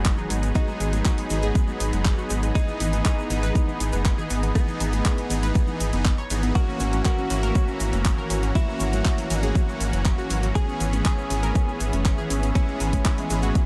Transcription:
Already playing: F#1 F#3 B3 D#4 G#4 D#5 F#5 B5, sub drop
0.05 G#3, kick, clap, closed hi-hat, shaker
0.18 D#4, low conga, shaker
0.30 G#1 G#3, open hi-hat, high woodblock, shaker
0.43 G#3, closed hi-hat, shaker
0.55 F#3 B3 D#4 F#4 G#4, kick, closed hi-hat, high conga, shaker
0.68 G#3, high woodblock, shaker
0.80 G#1 G#3, open hi-hat, low conga, shaker
0.93 G#3, closed hi-hat, high conga, shaker
1.05 F#4, kick, clap, closed hi-hat, shaker
1.18 G#3, open hi-hat, high woodblock, shaker
1.30 G#1 F#3 G#3 B3 D#4 G#4, open hi-hat, low conga, shaker
1.42 G#4, closed hi-hat, high conga, shaker
1.55 G#3, kick, closed hi-hat, shaker
1.68 G#3, high woodblock, shaker
1.80 G#1, open hi-hat, shaker
1.93 F#1 G#3, closed hi-hat, shaker
2.05 G#3, kick, clap, closed hi-hat, high woodblock, shaker
2.18 F#4, shaker
2.30 G#1 G#3, open hi-hat, shaker
2.43 G#3, closed hi-hat, shaker
2.55 E3 D#4 G#4, kick, closed hi-hat, high conga, high woodblock, shaker
2.68 B3, shaker
2.80 G#1 B3, open hi-hat, low conga, shaker
2.93 B3, closed hi-hat, high conga, shaker
3.05 D#4 G#4, kick, clap, closed hi-hat, shaker
3.18 B3, shaker
3.30 G#1 E3 B3 D#4 G#4, open hi-hat, low conga, shaker
3.43 B4, closed hi-hat, high conga, high woodblock, shaker
3.55 B3, kick, closed hi-hat, shaker
3.68 B3, shaker
3.80 G#1, open hi-hat, shaker
3.92 F#1 B3, closed hi-hat, high conga, high woodblock, shaker
4.05 B3, kick, clap, closed hi-hat, shaker
4.18 G#4, low conga, shaker
4.30 G#1 B3, open hi-hat, shaker
4.43 B3, closed hi-hat, high woodblock, shaker
4.55 E3 B3 G#4, kick, closed hi-hat, high conga, shaker
4.68 B3, shaker
4.80 G#1 B3, open hi-hat, low conga, high woodblock, shaker
4.93 B3, closed hi-hat, high conga, shaker
5.05 G#4, kick, clap, closed hi-hat, shaker
5.18 B3, open hi-hat, shaker
5.30 G#1 E3 B3 D#4 G#4, open hi-hat, low conga, high woodblock, shaker
5.43 B4, closed hi-hat, high conga, shaker
5.55 B3, kick, closed hi-hat, shaker
5.67 B3, shaker
5.80 G#1, open hi-hat, high woodblock, shaker
5.93 F#1 E3 B3 D#4 G#4, closed hi-hat, shaker
6.05 B3, kick, clap, closed hi-hat, shaker
6.18 C#5, high woodblock, shaker
6.30 G#1 E3 B3 D#4 G#4, open hi-hat, shaker
6.43 B3, closed hi-hat, shaker
6.55 E3 A#3 C#4 F#4 A#4 C#5 E5 A#5, kick, closed hi-hat, high conga, shaker
6.68 C#4, shaker
6.80 G#1 C#4, open hi-hat, low conga, shaker
6.93 C#4, closed hi-hat, high conga, high woodblock, shaker
7.05 F#4 A#4, kick, clap, closed hi-hat, shaker
7.18 C#4, shaker
7.30 G#1 E3 A#3 C#4 F#4, open hi-hat, low conga, high woodblock, shaker
7.43 A#4, closed hi-hat, high conga, shaker
7.55 C#4, kick, closed hi-hat, shaker
7.68 C#4, shaker
7.80 G#1, open hi-hat, high woodblock, shaker
7.93 F#1 C#4, closed hi-hat, high conga, shaker
8.05 C#4, kick, clap, closed hi-hat, shaker
8.18 A#4, low conga, shaker
8.30 G#1 C#4, open hi-hat, high woodblock, shaker
8.43 C#4, closed hi-hat, shaker
8.55 E3 A#3 C#4 E4 F#4 F#5, kick, closed hi-hat, high conga, shaker
8.68 F#3, high woodblock, shaker
8.80 G#1 F#3, open hi-hat, low conga, shaker
8.93 F#3, closed hi-hat, high conga, shaker
9.05 F#4, kick, clap, closed hi-hat, shaker
9.18 F#3, open hi-hat, high woodblock, shaker
9.30 G#1 E3 F#3 A#3 C#4 F#4, open hi-hat, low conga, shaker
9.43 G#4, closed hi-hat, high conga, shaker
9.55 F#3, kick, closed hi-hat, shaker
9.68 F#3, high woodblock, shaker
9.80 G#1, open hi-hat, shaker
9.93 F#1 F#3, closed hi-hat, shaker
10.05 F#3, kick, clap, closed hi-hat, high woodblock, shaker
10.18 F#4, shaker
10.30 G#1 F#3, open hi-hat, shaker
10.43 F#3, closed hi-hat, shaker
10.55 E3 B3 C#4 G#4 E5 B5, kick, closed hi-hat, high conga, high woodblock, shaker
10.68 C#4, shaker
10.80 G#1 C#4, open hi-hat, low conga, shaker
10.93 C#4, closed hi-hat, high conga, shaker
11.05 G#4, kick, clap, closed hi-hat, shaker
11.18 C#4, shaker
11.30 G#1 E3 B3 C#4 G#4, open hi-hat, low conga, shaker
11.43 A#4, closed hi-hat, high conga, high woodblock, shaker
11.55 C#4, kick, closed hi-hat, shaker
11.68 C#4, shaker
11.80 G#1, open hi-hat, shaker
11.92 F#1 C#4, closed hi-hat, high conga, high woodblock, shaker
12.05 C#4, kick, clap, closed hi-hat, shaker
12.18 G#4, low conga, shaker
12.30 G#1 C#4, open hi-hat, shaker
12.43 C#4, closed hi-hat, high woodblock, shaker
12.55 E3 B3 C#4 E4 G#4, kick, closed hi-hat, high conga, shaker
12.68 G#3, shaker
12.80 G#1 G#3, open hi-hat, low conga, high woodblock, shaker
12.93 G#3, kick, closed hi-hat, high conga, shaker
13.05 E4, kick, clap, closed hi-hat, shaker
13.18 G#3, open hi-hat, shaker
13.30 G#1 E3 G#3 B3 C#4 G#4, open hi-hat, low conga, high woodblock, shaker
13.42 F#4, closed hi-hat, high conga, shaker
13.55 G#3, kick, closed hi-hat, reverse cymbal, shaker

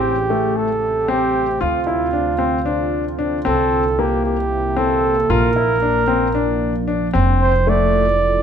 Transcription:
Already playing: A1 A3 C4 G4
0.30 A3
0.57 A4
1.08 C4 G4
1.61 D2 D3 F4
1.87 E4
2.13 D4
2.38 C4
2.66 D4
3.19 D4
3.45 C2 C3 A#3 C4 E4 A4
3.99 A#3 G4
4.26 G4
4.77 C4 A4
5.30 A#1 F3 D4 F4 A#4
5.56 E4
5.82 D4
6.08 C4
6.35 D4
6.88 D4
7.13 F1 F3 C4 E4 A4
7.42 C5
7.67 A3 D5

